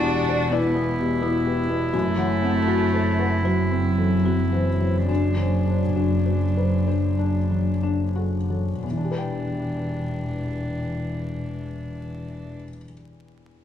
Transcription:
0.00 1.96 E1 medium
0.00 1.90 E2 medium
0.00 0.99 B2 medium
0.00 0.75 B3 medium
0.00 0.52 D4 loud
0.00 0.54 F#4 medium
0.00 0.19 G4 soft
0.04 0.19 G4 medium
0.04 0.42 D5 soft
0.29 0.52 C5 soft
0.29 0.43 D5 medium
0.50 0.98 B3 medium
0.50 5.08 E4 medium
0.50 0.66 E4 medium
0.50 0.90 D5 medium
0.75 1.13 B3 soft
0.99 1.37 B2 soft
0.99 1.14 G4 medium
1.22 1.60 B3 medium
1.22 1.37 E4 medium
1.45 1.84 G4 soft
1.45 1.61 B4 medium
1.69 1.93 B2 soft
1.69 1.85 B4 soft
1.93 8.84 F#1 medium
1.93 5.05 F#2 medium
1.93 3.45 A3 medium
1.93 2.08 F#4 medium
2.18 2.58 F#3 soft
2.18 2.33 F#5 soft
2.42 2.83 C4 soft
2.42 2.58 F#5 soft
2.68 3.09 F#4 soft
2.68 2.83 F#4 medium
2.94 3.09 A4 medium
2.94 3.35 C5 soft
3.19 3.45 B4 soft
3.19 3.35 F#5 soft
3.43 4.53 F#3 medium
3.43 3.61 F#4 medium
3.43 3.87 C5 soft
3.71 4.14 C4 soft
3.98 4.41 F#3 soft
3.98 4.14 A4 soft
4.25 4.69 C4 soft
4.25 4.42 F#4 medium
4.51 5.08 E3 medium
4.51 4.97 F#4 soft
4.51 4.69 C5 soft
4.80 5.09 F#3 soft
4.80 4.98 C5 soft
5.08 8.79 F#2 soft
5.08 8.13 F#3 medium
5.08 7.80 D4 soft
5.08 5.27 D4 medium
5.37 5.84 F#3 soft
5.37 5.55 C5 soft
5.66 6.14 D4 soft
5.66 5.85 C5 soft
5.96 6.14 D4 soft
5.96 6.44 F#4 soft
6.26 6.45 F#4 soft
6.26 6.75 C5 soft
6.57 6.88 B4 soft
6.57 6.76 C5 soft
6.87 7.07 D4 medium
6.87 7.38 C5 soft
7.19 7.70 D4 soft
7.51 8.03 F#3 soft
7.51 7.71 F#4 soft
7.83 8.37 D4 soft
7.83 8.04 D4 soft
8.16 8.70 F#4 soft
8.16 8.37 A4 soft
8.50 8.83 F#3 soft
8.50 8.71 A4 soft
8.83 12.57 E1 soft
8.83 12.56 E2 soft
8.83 12.56 E3 medium
8.83 12.56 D4 soft
8.90 12.63 E3 soft
8.97 12.70 D4 soft
9.04 12.77 G4 soft
9.11 12.84 B4 soft
9.18 12.91 G5 soft

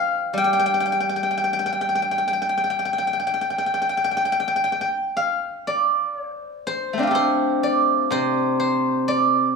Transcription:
0.00 0.81 F3 medium
0.00 1.59 F5 medium
0.00 0.37 G5 medium
0.33 3.18 G3 soft
0.38 0.44 G5 medium
0.44 0.53 G5 medium
0.53 0.59 G5 medium
0.59 0.65 G5 medium
0.66 0.74 G5 medium
0.74 0.80 G5 soft
0.80 0.85 G5 medium
0.86 0.92 G5 soft
0.92 1.00 G5 soft
1.00 1.09 G5 soft
1.09 1.16 G5 soft
1.16 1.23 G5 soft
1.23 1.30 G5 soft
1.31 1.37 G5 soft
1.37 1.44 G5 medium
1.44 1.53 G5 soft
1.53 1.59 G5 soft
1.59 1.65 G5 soft
1.66 1.72 G5 medium
1.72 1.81 G5 soft
1.81 1.88 G5 soft
1.89 1.95 G5 soft
1.95 2.02 G5 soft
2.02 2.11 G5 soft
2.11 2.18 G5 soft
2.18 2.27 G5 soft
2.28 2.33 G5 soft
2.33 2.41 G5 soft
2.42 2.49 G5 soft
2.49 2.57 G5 soft
2.57 2.63 G5 soft
2.64 2.70 G5 soft
2.70 2.79 G5 soft
2.79 2.85 G5 soft
2.85 2.93 G5 soft
2.93 2.98 G5 soft
2.98 3.07 G5 soft
3.07 3.13 G5 soft
3.13 3.19 G5 soft
3.20 3.26 G5 soft
3.27 3.33 G5 soft
3.34 3.41 G5 soft
3.41 3.50 G5 soft
3.50 3.58 G5 soft
3.58 3.66 G5 soft
3.66 3.73 G5 soft
3.74 3.81 G5 soft
3.82 3.89 G5 soft
3.89 3.97 G5 soft
3.97 4.04 G5 soft
4.04 4.11 G5 soft
4.11 4.16 G5 soft
4.17 4.25 G5 medium
4.25 4.32 G5 soft
4.32 4.39 G5 medium
4.40 4.47 G5 soft
4.48 4.56 G5 soft
4.56 4.63 G5 soft
4.64 4.72 G5 medium
4.72 4.81 G5 soft
4.81 6.36 G5 medium
5.17 6.83 F5 medium
5.67 6.16 D5 medium
6.16 6.28 C#5 medium
6.28 6.67 C5 medium
6.67 7.15 C5 medium
6.93 9.56 A3 soft
6.98 9.56 C4 soft
6.98 9.56 D4 soft
7.03 9.55 F4 soft
7.07 9.43 G4 soft
7.07 9.30 A4 soft
7.15 8.11 C5 medium
7.63 9.08 D5 medium
8.11 9.56 C3 medium
8.11 8.59 C5 medium
8.60 9.56 C5 medium
9.08 9.56 D5 medium

